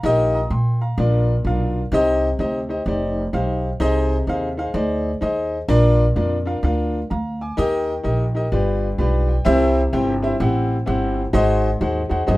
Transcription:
0.00 0.43 A#1 loud
0.00 0.38 D#4 loud
0.00 0.32 F5 medium
0.00 0.31 A#5 medium
0.04 0.77 A#2 medium
0.04 0.38 G4 loud
0.04 0.39 A#4 loud
0.04 0.39 D#5 loud
0.34 0.50 A#5 medium
0.34 0.50 D#6 medium
0.50 0.90 A#2 medium
0.50 0.80 G5 medium
0.50 0.79 C6 medium
0.81 1.26 F5 medium
0.81 1.26 A#5 medium
0.98 1.38 A#1 loud
0.98 1.71 A#2 medium
0.98 1.33 D4 medium
0.98 1.33 F4 medium
0.98 1.33 A#4 medium
0.98 1.33 D5 medium
1.45 1.85 B1 medium
1.45 1.80 D4 medium
1.45 1.80 F4 medium
1.45 1.80 A#4 medium
1.45 1.81 F5 medium
1.92 2.32 C2 loud
1.92 2.66 C3 medium
1.92 2.27 D#4 loud
1.92 2.27 G4 loud
1.92 2.27 C5 loud
1.92 2.28 D#5 loud
2.39 2.79 D2 medium
2.39 2.58 D#4 medium
2.39 2.59 G4 medium
2.39 2.59 C5 medium
2.39 2.59 D#5 medium
2.69 2.80 D#4 medium
2.69 2.80 G4 medium
2.69 2.80 C5 medium
2.69 2.81 D#5 medium
2.86 3.26 F1 loud
2.86 3.21 D#4 medium
2.86 3.21 G4 medium
2.86 3.22 C5 medium
2.86 3.22 D5 medium
3.33 3.73 B1 medium
3.33 3.68 D#4 medium
3.33 3.68 G4 medium
3.33 3.68 C5 medium
3.33 3.69 F5 medium
3.80 4.20 C2 loud
3.80 4.54 C3 medium
3.80 4.15 D#4 loud
3.80 4.15 G#4 loud
3.80 4.15 C5 loud
3.80 4.16 D#5 loud
4.27 4.67 D#2 medium
4.27 4.47 D#4 medium
4.27 4.47 G#4 medium
4.27 4.47 C5 medium
4.27 4.48 F5 medium
4.57 4.68 D#4 medium
4.57 4.69 G#4 medium
4.57 4.69 C5 medium
4.57 4.69 F5 medium
4.74 5.14 D2 loud
4.74 5.09 D#4 medium
4.74 5.09 G#4 medium
4.74 5.10 C5 medium
4.74 5.10 D5 medium
5.21 5.62 D#2 medium
5.21 5.56 D#4 medium
5.21 5.56 G#4 medium
5.21 5.57 C5 medium
5.21 5.57 D#5 medium
5.68 6.09 A#1 loud
5.68 6.42 A#2 medium
5.68 6.04 D4 loud
5.68 6.04 F4 loud
5.68 6.04 A#4 loud
5.68 6.04 D5 loud
6.16 6.56 F2 loud
6.16 6.35 D4 medium
6.16 6.36 F4 medium
6.16 6.36 A#4 medium
6.16 6.36 D5 medium
6.46 6.57 D4 medium
6.46 6.57 F4 medium
6.46 6.57 A#4 medium
6.46 6.57 F5 medium
6.63 7.03 D2 medium
6.63 6.98 D4 medium
6.63 6.98 F4 medium
6.63 6.98 A#4 medium
6.63 6.99 F5 medium
7.10 7.51 D2 medium
7.10 7.40 F5 medium
7.10 7.39 A#5 medium
7.41 7.86 G#5 medium
7.41 7.86 D6 medium
7.57 7.98 D#2 loud
7.57 8.31 D#3 medium
7.57 7.92 D#4 loud
7.57 7.92 G4 loud
7.57 7.92 A#4 loud
7.57 7.93 D#5 loud
8.04 8.44 A#1 medium
8.04 8.23 D#4 medium
8.04 8.23 G4 medium
8.04 8.24 A#4 medium
8.04 8.24 D#5 medium
8.35 8.45 D#4 medium
8.35 8.46 G4 medium
8.35 8.46 A#4 medium
8.35 8.46 D#5 medium
8.52 8.92 G1 loud
8.52 9.25 G2 medium
8.52 8.86 F4 medium
8.52 8.86 G4 medium
8.52 8.87 B4 medium
8.52 8.87 D5 medium
8.98 9.38 B1 medium
8.98 9.33 F4 medium
8.98 9.33 G4 medium
8.98 9.34 B4 medium
8.98 9.34 D5 medium
8.98 9.27 B5 medium
9.29 9.44 G5 medium
9.45 9.86 C2 loud
9.45 10.19 C3 medium
9.45 9.80 C4 loud
9.45 9.80 E4 loud
9.45 9.80 G4 loud
9.45 9.80 C5 loud
9.45 9.80 E5 loud
9.93 10.33 G1 loud
9.93 10.12 C4 medium
9.93 10.12 E4 medium
9.93 10.12 G4 medium
9.93 10.12 C5 medium
9.93 10.12 G5 loud
10.22 10.33 C4 medium
10.22 10.33 E4 medium
10.22 10.34 G4 medium
10.22 10.34 C5 medium
10.22 10.34 E5 medium
10.40 10.80 A1 loud
10.40 10.74 C4 medium
10.40 10.74 E4 medium
10.40 10.75 G4 medium
10.40 10.75 C5 medium
10.40 10.75 F#5 medium
10.86 11.27 G1 loud
10.86 11.21 C4 medium
10.86 11.21 E4 medium
10.86 11.21 G4 medium
10.86 11.22 C5 medium
10.86 11.22 F#5 medium
11.33 11.73 G#1 loud
11.33 12.07 G#2 medium
11.33 11.68 D#4 loud
11.33 11.68 F#4 loud
11.33 11.68 G#4 loud
11.33 11.69 C5 loud
11.33 11.69 D#5 loud
11.81 12.06 D#2 loud
11.81 12.00 D#4 medium
11.81 12.00 F#4 medium
11.81 12.00 G#4 medium
11.81 12.00 C5 medium
11.81 12.00 F#5 loud
12.09 12.25 E2 medium
12.09 12.21 D#4 medium
12.09 12.21 F#4 medium
12.09 12.21 G#4 medium
12.09 12.21 C5 medium
12.09 12.22 F#5 medium
12.27 12.37 F#2 loud
12.27 12.37 D#4 medium
12.27 12.37 F#4 medium
12.27 12.37 G#4 medium
12.27 12.37 C5 medium
12.27 12.37 D#5 loud

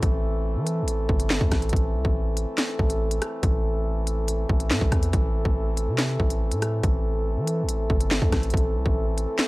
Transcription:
0.00 0.57 A1 loud
0.00 1.69 E3 medium
0.00 5.09 A3 medium
0.00 5.09 C4 medium
0.00 5.09 A4 medium
0.00 kick loud
0.00 closed hi-hat medium
0.56 0.84 E3 medium
0.67 closed hi-hat medium
0.82 1.08 A1 loud
0.88 closed hi-hat medium
1.09 1.40 G1 loud
1.09 kick medium
1.20 closed hi-hat medium
1.30 snare loud
1.30 clap medium
1.41 1.51 E2 loud
1.41 kick loud
1.51 1.72 A1 loud
1.51 kick medium
1.51 cross-stick medium
1.51 snare medium
1.51 closed hi-hat medium
1.62 closed hi-hat medium
1.69 1.96 A1 loud
1.69 8.50 E3 medium
1.69 kick loud
1.69 closed hi-hat medium
1.76 closed hi-hat medium
1.94 2.04 C2 loud
2.05 2.46 A1 loud
2.05 kick medium
2.37 closed hi-hat medium
2.58 snare loud
2.58 clap medium
2.58 closed hi-hat medium
2.79 3.20 A1 loud
2.79 kick medium
2.90 closed hi-hat medium
3.11 closed hi-hat medium
3.22 cross-stick medium
3.22 closed hi-hat medium
3.43 4.45 A1 loud
3.43 kick loud
3.43 closed hi-hat medium
4.07 closed hi-hat medium
4.28 closed hi-hat medium
4.49 4.72 A1 loud
4.49 kick medium
4.60 closed hi-hat medium
4.70 4.81 A2 loud
4.70 snare loud
4.70 clap loud
4.81 4.92 A1 loud
4.81 kick loud
4.92 5.12 E2 loud
4.92 kick medium
4.92 cross-stick medium
4.92 closed hi-hat medium
5.03 closed hi-hat medium
5.13 5.44 A1 loud
5.13 9.48 A3 medium
5.13 9.48 C4 medium
5.13 9.48 A4 medium
5.13 kick loud
5.13 closed hi-hat medium
5.45 5.89 A1 loud
5.45 kick medium
5.77 closed hi-hat medium
5.88 6.18 C3 loud
5.98 snare loud
5.98 clap medium
5.98 closed hi-hat medium
6.20 6.53 A1 loud
6.20 kick medium
6.30 closed hi-hat medium
6.52 6.82 A2 loud
6.52 closed hi-hat medium
6.62 cross-stick medium
6.62 closed hi-hat medium
6.83 7.38 A1 loud
6.83 kick loud
6.83 closed hi-hat medium
7.37 7.65 E3 loud
7.47 closed hi-hat medium
7.63 7.89 A1 loud
7.69 closed hi-hat medium
7.90 8.21 G1 loud
7.90 kick medium
8.01 closed hi-hat medium
8.11 snare loud
8.11 clap medium
8.22 8.32 E2 loud
8.22 kick loud
8.32 8.53 A1 loud
8.32 kick medium
8.32 cross-stick medium
8.32 snare medium
8.32 closed hi-hat medium
8.43 closed hi-hat medium
8.50 8.77 A1 loud
8.50 9.48 E3 medium
8.50 kick loud
8.50 closed hi-hat medium
8.57 closed hi-hat medium
8.75 8.85 C2 loud
8.86 9.26 A1 loud
8.86 kick medium
9.18 closed hi-hat medium
9.38 snare loud
9.38 clap medium
9.38 closed hi-hat medium

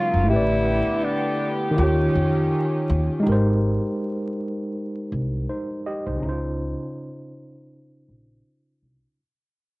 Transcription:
0.00 0.26 C#3 medium
0.00 0.25 F#3 medium
0.00 0.26 F#3 medium
0.00 0.22 G#3 medium
0.00 0.26 A#3 medium
0.00 0.24 D#4 medium
0.00 0.29 F4 loud
0.00 0.27 A#4 medium
0.00 0.31 C#5 medium
0.14 0.30 F#1 medium
0.24 1.72 A3 medium
0.24 1.73 E4 medium
0.29 0.80 A1 medium
0.29 1.76 D3 medium
0.29 1.76 B3 medium
0.29 1.05 E4 loud
0.29 3.22 G4 medium
0.29 1.75 G4 medium
0.33 1.76 B4 medium
0.33 1.78 D5 medium
1.04 1.52 D4 medium
1.71 3.19 D#3 medium
1.71 3.21 D#4 medium
1.77 2.10 D#2 medium
1.77 3.24 D#3 medium
1.77 3.24 C#4 medium
1.77 3.22 F4 medium
1.77 2.48 G4 medium
1.77 3.24 G4 medium
1.83 3.26 C#5 medium
2.15 2.47 F2 medium
2.89 3.07 D#2 loud
3.20 6.15 G#3 medium
3.20 5.42 D#4 medium
3.26 3.76 G#1 loud
3.26 5.44 G4 medium
3.26 5.45 A#4 medium
3.32 5.47 C5 medium
5.12 5.44 C2 medium
5.49 5.84 D#4 medium
5.49 5.84 C5 medium
5.86 6.06 G4 medium
5.86 6.05 D#5 medium
6.07 6.20 C2 medium
6.07 6.21 D#4 soft
6.07 6.27 C5 medium
6.16 9.11 C#3 medium
6.16 9.13 C#4 medium
6.22 6.73 C#2 medium
6.22 9.14 D#4 medium
6.22 6.31 E4 medium
6.29 9.19 F4 medium
6.29 9.18 C5 medium
8.08 8.40 A#1 medium
8.82 9.00 C2 medium

